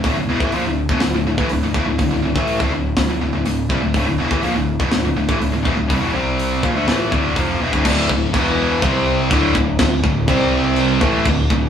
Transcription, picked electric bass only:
\new Staff \with { instrumentName = "Picked electric bass" } { \clef bass \time 4/4 \key d \minor \tempo 4 = 123 d,,16 d,,16 e,,16 a,,16 bes,,16 d,,8 e,,16 d,,16 d,,16 d,,16 a,,16 d,,16 d,,16 e,,16 d,,16 | d,,16 d,,16 d,,16 a,,8 d,,16 d,,8 d,,16 d,,16 d,,16 d,,16 d,,8 c,16 d,,16 | d,,16 d,,16 e,,16 a,,16 bes,,16 d,,8 e,,16 d,,16 d,,16 d,,16 a,,16 d,,16 d,,16 e,,16 d,,16 | c,16 e,,16 c,4 bes,,16 d,16 a,,8 d,,8 f,,8 e,,16 d,,16 |
d,,8 d,,8 e,,4 c,4 d,,8 d,,8 | d,,8 d,,8 c,4. a,,8 d,,8 d,,8 | }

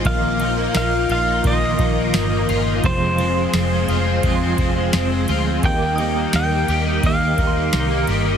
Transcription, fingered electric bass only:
\new Staff \with { instrumentName = "Fingered electric bass" } { \clef bass \time 4/4 \key ees \major \tempo 4 = 86 bes,,4 bes,,8 bes,,8 bes,,8 bes,,8 g,,8 g,,8 | f,,4 f,,8 f,,8 f,,8 f,,8 f,,8 d,8 | ees,4 ees,8 ees,8 ees,8 ees,8 c,8 g,,8 | }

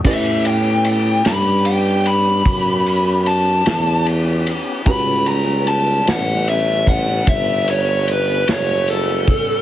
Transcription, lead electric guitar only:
\new Staff \with { instrumentName = "Lead electric guitar" } { \time 12/8 \key a \major \tempo 4. = 50 e''8 g''8 g''8 b''8 g''8 b''4. a''4 r4 | b''8 ais''8 a''8 fis''8 e''8 fis''8 e''8 cis''8 b'8 cis''8 a'4 | }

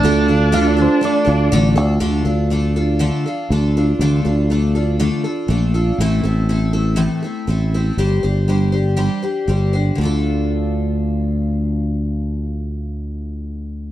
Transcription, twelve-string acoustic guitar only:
\new Staff \with { instrumentName = "Twelve-string acoustic guitar" } { \time 4/4 \key d \minor \tempo 4 = 120 <d a d' f' a'>8 <d' f' a'>8 <d a d' f' a'>8 <d' f' a'>8 <a d' f' a'>8 <d' f' a'>8 <d a d' f' a'>8 <d' f' a'>8 | <d a d' f' a'>8 <d' f' a'>8 <a d' f' a'>8 <d' f' a'>8 <d a d' f' a'>8 <d' f' a'>8 <a d' f' a'>8 <d' f' a'>8 | <d a d' f' a'>8 <d' f' a'>8 <a d' f' a'>8 <d' f' a'>8 <d a d' f' a'>8 <d' f' a'>8 <a d' f' a'>8 <d' f' a'>8 | <a, e a c' e' a'>8 <a c' e' a'>8 <a c' e' a'>8 <a c' e' a'>8 <a, e a c' e' a'>8 <a c' e' a'>8 <a c' e' a'>8 <a c' e' a'>8 |
<g d' g' c''>8 <d' g' c''>8 <g d' g' c''>8 <d' g' c''>8 <g d' g' c''>8 <d' g' c''>8 <g d' g' c''>8 <d' g' c''>8 | <d a d' f' a'>1~ | <d a d' f' a'>1 | }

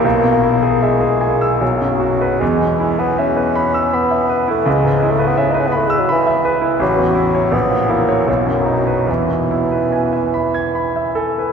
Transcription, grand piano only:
\new Staff \with { instrumentName = "Grand piano" } { \time 3/4 \key e \major \tempo 4 = 78 << { b,,16 b,16 e'16 gis'16 e''16 gis'16 gis''16 e'''16 b,,16 fis,16 fis'16 b'16 | e,16 b,16 e'16 b'16 e''16 b'16 b''16 e'''16 b''16 e''16 b'16 e'16 | cis,16 gis,16 e'16 b'16 e''16 b'16 b''16 e'''16 b''16 e''16 b'16 e'16 | a,,16 e,16 e'16 cis''16 ais,,16 ais,16 e'16 cis''16 b,,16 fis,16 dis'16 b'16 |
e,16 b,16 e'16 b'16 gis''16 e''16 b''16 gis'''16 b''16 e''16 gis''16 b'16 | } \\ { r2. | r2. | r2. | r2. |
r2 r8 a'8 | } >> }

